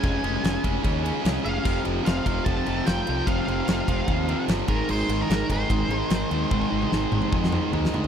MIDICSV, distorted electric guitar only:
0, 0, Header, 1, 2, 480
1, 0, Start_track
1, 0, Tempo, 405405
1, 39, Time_signature, 4, 2, 24, 8
1, 9558, End_track
2, 0, Start_track
2, 0, Title_t, "Distorted electric guitar"
2, 0, Program_c, 0, 30
2, 47, Note_on_c, 0, 49, 90
2, 52, Note_on_c, 0, 61, 115
2, 55, Note_on_c, 0, 56, 106
2, 259, Note_off_c, 0, 49, 0
2, 269, Note_off_c, 0, 56, 0
2, 273, Note_on_c, 0, 49, 84
2, 278, Note_off_c, 0, 61, 0
2, 283, Note_on_c, 0, 56, 87
2, 292, Note_on_c, 0, 61, 93
2, 503, Note_off_c, 0, 49, 0
2, 516, Note_off_c, 0, 56, 0
2, 517, Note_on_c, 0, 49, 100
2, 521, Note_off_c, 0, 61, 0
2, 530, Note_on_c, 0, 56, 107
2, 535, Note_on_c, 0, 61, 114
2, 741, Note_off_c, 0, 49, 0
2, 751, Note_off_c, 0, 61, 0
2, 753, Note_off_c, 0, 56, 0
2, 755, Note_on_c, 0, 49, 80
2, 765, Note_on_c, 0, 61, 94
2, 767, Note_on_c, 0, 56, 95
2, 967, Note_off_c, 0, 49, 0
2, 981, Note_off_c, 0, 56, 0
2, 981, Note_on_c, 0, 49, 107
2, 982, Note_off_c, 0, 61, 0
2, 995, Note_on_c, 0, 56, 99
2, 996, Note_on_c, 0, 61, 117
2, 1208, Note_off_c, 0, 49, 0
2, 1213, Note_off_c, 0, 56, 0
2, 1218, Note_off_c, 0, 61, 0
2, 1222, Note_on_c, 0, 49, 95
2, 1228, Note_on_c, 0, 56, 97
2, 1232, Note_on_c, 0, 61, 93
2, 1441, Note_off_c, 0, 49, 0
2, 1447, Note_off_c, 0, 56, 0
2, 1454, Note_off_c, 0, 61, 0
2, 1455, Note_on_c, 0, 49, 90
2, 1461, Note_on_c, 0, 56, 97
2, 1468, Note_on_c, 0, 61, 90
2, 1689, Note_off_c, 0, 49, 0
2, 1694, Note_off_c, 0, 56, 0
2, 1697, Note_off_c, 0, 61, 0
2, 1703, Note_on_c, 0, 49, 90
2, 1709, Note_on_c, 0, 56, 88
2, 1711, Note_on_c, 0, 61, 101
2, 1934, Note_off_c, 0, 49, 0
2, 1936, Note_off_c, 0, 56, 0
2, 1937, Note_on_c, 0, 41, 92
2, 1938, Note_off_c, 0, 61, 0
2, 1951, Note_on_c, 0, 48, 110
2, 1951, Note_on_c, 0, 53, 111
2, 2173, Note_off_c, 0, 48, 0
2, 2177, Note_off_c, 0, 41, 0
2, 2181, Note_on_c, 0, 41, 86
2, 2186, Note_off_c, 0, 53, 0
2, 2187, Note_on_c, 0, 48, 93
2, 2191, Note_on_c, 0, 53, 88
2, 2404, Note_off_c, 0, 41, 0
2, 2408, Note_on_c, 0, 41, 112
2, 2412, Note_off_c, 0, 48, 0
2, 2421, Note_off_c, 0, 53, 0
2, 2426, Note_on_c, 0, 48, 104
2, 2426, Note_on_c, 0, 53, 110
2, 2657, Note_off_c, 0, 41, 0
2, 2663, Note_off_c, 0, 48, 0
2, 2671, Note_on_c, 0, 41, 96
2, 2672, Note_off_c, 0, 53, 0
2, 2677, Note_on_c, 0, 48, 93
2, 2687, Note_on_c, 0, 53, 101
2, 2901, Note_off_c, 0, 41, 0
2, 2908, Note_off_c, 0, 48, 0
2, 2915, Note_on_c, 0, 41, 91
2, 2918, Note_off_c, 0, 53, 0
2, 2922, Note_on_c, 0, 48, 100
2, 2932, Note_on_c, 0, 53, 104
2, 3144, Note_off_c, 0, 41, 0
2, 3157, Note_off_c, 0, 48, 0
2, 3158, Note_on_c, 0, 41, 85
2, 3166, Note_off_c, 0, 53, 0
2, 3171, Note_on_c, 0, 48, 96
2, 3180, Note_on_c, 0, 53, 102
2, 3382, Note_off_c, 0, 48, 0
2, 3385, Note_off_c, 0, 41, 0
2, 3396, Note_on_c, 0, 48, 87
2, 3397, Note_off_c, 0, 53, 0
2, 3399, Note_on_c, 0, 41, 96
2, 3411, Note_on_c, 0, 53, 104
2, 3631, Note_off_c, 0, 41, 0
2, 3634, Note_off_c, 0, 48, 0
2, 3644, Note_off_c, 0, 53, 0
2, 3646, Note_on_c, 0, 41, 93
2, 3648, Note_on_c, 0, 48, 89
2, 3658, Note_on_c, 0, 53, 99
2, 3863, Note_off_c, 0, 41, 0
2, 3876, Note_off_c, 0, 48, 0
2, 3877, Note_off_c, 0, 53, 0
2, 3877, Note_on_c, 0, 41, 98
2, 3890, Note_on_c, 0, 48, 115
2, 3891, Note_on_c, 0, 53, 110
2, 4107, Note_off_c, 0, 41, 0
2, 4112, Note_off_c, 0, 48, 0
2, 4119, Note_off_c, 0, 53, 0
2, 4121, Note_on_c, 0, 41, 95
2, 4126, Note_on_c, 0, 48, 93
2, 4133, Note_on_c, 0, 53, 91
2, 4349, Note_off_c, 0, 41, 0
2, 4354, Note_off_c, 0, 48, 0
2, 4358, Note_off_c, 0, 53, 0
2, 4363, Note_on_c, 0, 41, 99
2, 4368, Note_on_c, 0, 48, 108
2, 4372, Note_on_c, 0, 53, 115
2, 4590, Note_off_c, 0, 41, 0
2, 4591, Note_off_c, 0, 48, 0
2, 4594, Note_off_c, 0, 53, 0
2, 4604, Note_on_c, 0, 41, 86
2, 4606, Note_on_c, 0, 48, 96
2, 4608, Note_on_c, 0, 53, 99
2, 4817, Note_off_c, 0, 41, 0
2, 4824, Note_off_c, 0, 48, 0
2, 4828, Note_off_c, 0, 53, 0
2, 4831, Note_on_c, 0, 41, 97
2, 4839, Note_on_c, 0, 48, 106
2, 4842, Note_on_c, 0, 53, 102
2, 5061, Note_off_c, 0, 41, 0
2, 5066, Note_off_c, 0, 48, 0
2, 5075, Note_on_c, 0, 41, 95
2, 5079, Note_off_c, 0, 53, 0
2, 5080, Note_on_c, 0, 48, 106
2, 5093, Note_on_c, 0, 53, 101
2, 5291, Note_off_c, 0, 41, 0
2, 5302, Note_off_c, 0, 48, 0
2, 5305, Note_off_c, 0, 53, 0
2, 5305, Note_on_c, 0, 41, 95
2, 5317, Note_on_c, 0, 48, 95
2, 5319, Note_on_c, 0, 53, 104
2, 5530, Note_off_c, 0, 41, 0
2, 5534, Note_on_c, 0, 44, 97
2, 5536, Note_off_c, 0, 48, 0
2, 5540, Note_off_c, 0, 53, 0
2, 5541, Note_on_c, 0, 51, 101
2, 5549, Note_on_c, 0, 56, 120
2, 5782, Note_off_c, 0, 51, 0
2, 5785, Note_off_c, 0, 44, 0
2, 5789, Note_on_c, 0, 44, 108
2, 5796, Note_on_c, 0, 51, 94
2, 5798, Note_off_c, 0, 56, 0
2, 5803, Note_on_c, 0, 56, 112
2, 6024, Note_off_c, 0, 44, 0
2, 6026, Note_off_c, 0, 51, 0
2, 6028, Note_on_c, 0, 44, 91
2, 6034, Note_off_c, 0, 56, 0
2, 6038, Note_on_c, 0, 56, 96
2, 6040, Note_on_c, 0, 51, 89
2, 6256, Note_off_c, 0, 51, 0
2, 6263, Note_off_c, 0, 44, 0
2, 6265, Note_off_c, 0, 56, 0
2, 6267, Note_on_c, 0, 44, 103
2, 6270, Note_on_c, 0, 56, 112
2, 6271, Note_on_c, 0, 51, 105
2, 6502, Note_off_c, 0, 51, 0
2, 6507, Note_off_c, 0, 44, 0
2, 6512, Note_on_c, 0, 44, 84
2, 6516, Note_on_c, 0, 51, 91
2, 6521, Note_off_c, 0, 56, 0
2, 6526, Note_on_c, 0, 56, 103
2, 6729, Note_off_c, 0, 44, 0
2, 6738, Note_off_c, 0, 51, 0
2, 6744, Note_on_c, 0, 44, 107
2, 6747, Note_off_c, 0, 56, 0
2, 6752, Note_on_c, 0, 51, 107
2, 6762, Note_on_c, 0, 56, 114
2, 6983, Note_off_c, 0, 44, 0
2, 6991, Note_off_c, 0, 51, 0
2, 6992, Note_off_c, 0, 56, 0
2, 6998, Note_on_c, 0, 44, 84
2, 7005, Note_on_c, 0, 51, 97
2, 7006, Note_on_c, 0, 56, 109
2, 7219, Note_off_c, 0, 44, 0
2, 7231, Note_off_c, 0, 56, 0
2, 7232, Note_off_c, 0, 51, 0
2, 7233, Note_on_c, 0, 44, 103
2, 7245, Note_on_c, 0, 56, 116
2, 7246, Note_on_c, 0, 51, 103
2, 7450, Note_off_c, 0, 44, 0
2, 7460, Note_off_c, 0, 51, 0
2, 7465, Note_on_c, 0, 44, 82
2, 7467, Note_off_c, 0, 56, 0
2, 7474, Note_on_c, 0, 51, 103
2, 7481, Note_on_c, 0, 56, 93
2, 7688, Note_off_c, 0, 44, 0
2, 7701, Note_off_c, 0, 51, 0
2, 7702, Note_on_c, 0, 44, 101
2, 7706, Note_off_c, 0, 56, 0
2, 7715, Note_on_c, 0, 51, 110
2, 7720, Note_on_c, 0, 56, 115
2, 7924, Note_off_c, 0, 44, 0
2, 7929, Note_off_c, 0, 51, 0
2, 7934, Note_off_c, 0, 56, 0
2, 7938, Note_on_c, 0, 44, 81
2, 7943, Note_on_c, 0, 51, 92
2, 7948, Note_on_c, 0, 56, 94
2, 8181, Note_off_c, 0, 44, 0
2, 8190, Note_off_c, 0, 51, 0
2, 8192, Note_off_c, 0, 56, 0
2, 8196, Note_on_c, 0, 44, 108
2, 8204, Note_on_c, 0, 51, 109
2, 8206, Note_on_c, 0, 56, 127
2, 8437, Note_off_c, 0, 44, 0
2, 8441, Note_off_c, 0, 51, 0
2, 8451, Note_on_c, 0, 44, 89
2, 8455, Note_off_c, 0, 56, 0
2, 8455, Note_on_c, 0, 51, 88
2, 8469, Note_on_c, 0, 56, 96
2, 8671, Note_off_c, 0, 44, 0
2, 8679, Note_off_c, 0, 51, 0
2, 8685, Note_on_c, 0, 44, 96
2, 8687, Note_off_c, 0, 56, 0
2, 8693, Note_on_c, 0, 51, 91
2, 8701, Note_on_c, 0, 56, 97
2, 8905, Note_off_c, 0, 44, 0
2, 8913, Note_off_c, 0, 51, 0
2, 8915, Note_off_c, 0, 56, 0
2, 8919, Note_on_c, 0, 44, 98
2, 8927, Note_on_c, 0, 51, 104
2, 8929, Note_on_c, 0, 56, 93
2, 9140, Note_off_c, 0, 44, 0
2, 9144, Note_off_c, 0, 51, 0
2, 9152, Note_off_c, 0, 56, 0
2, 9154, Note_on_c, 0, 44, 100
2, 9158, Note_on_c, 0, 51, 105
2, 9166, Note_on_c, 0, 56, 119
2, 9385, Note_off_c, 0, 44, 0
2, 9396, Note_off_c, 0, 51, 0
2, 9397, Note_off_c, 0, 56, 0
2, 9399, Note_on_c, 0, 44, 88
2, 9411, Note_on_c, 0, 51, 94
2, 9411, Note_on_c, 0, 56, 98
2, 9558, Note_off_c, 0, 44, 0
2, 9558, Note_off_c, 0, 51, 0
2, 9558, Note_off_c, 0, 56, 0
2, 9558, End_track
0, 0, End_of_file